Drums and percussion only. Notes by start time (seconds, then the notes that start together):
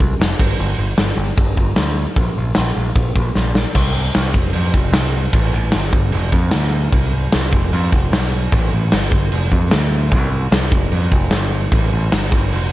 0.00 kick
0.21 snare, open hi-hat
0.39 kick, crash
0.98 snare, open hi-hat
1.37 kick, open hi-hat
1.57 kick
1.76 snare, open hi-hat
2.15 kick, open hi-hat
2.55 snare, open hi-hat
2.95 kick, open hi-hat
3.16 kick
3.35 snare
3.55 snare
3.75 kick, crash
4.15 snare, crash
4.34 kick
4.53 crash
4.74 kick
4.93 snare, crash
5.33 kick, crash
5.72 snare, crash
5.93 kick
6.12 crash
6.32 kick
6.51 snare, crash
6.92 kick, crash
7.32 snare, crash
7.53 kick
7.73 crash
7.92 kick
8.13 snare, crash
8.52 kick, crash
8.92 snare, crash
9.12 kick
9.32 crash
9.52 kick
9.71 snare, crash
10.11 kick, crash
10.52 snare, crash
10.72 kick
10.91 crash
11.12 kick
11.31 snare, crash
11.72 kick, crash
12.12 snare, crash
12.32 kick
12.53 crash